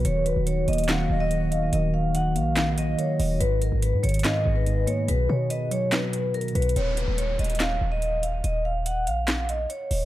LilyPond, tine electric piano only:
\new Staff \with { instrumentName = "Tine electric piano" } { \clef bass \time 4/4 \key ees \minor \tempo 4 = 143 ees4 ees8 bes8 ees4 ees8 ees''8 | ees4 ees8 bes8 ees4 ees8 ees''8 | aes,4 aes,8 ees8 aes,4 aes,8 bes8 | b,4 b,8 fis8 b,4 b,8 b'8 |
r1 | r1 | }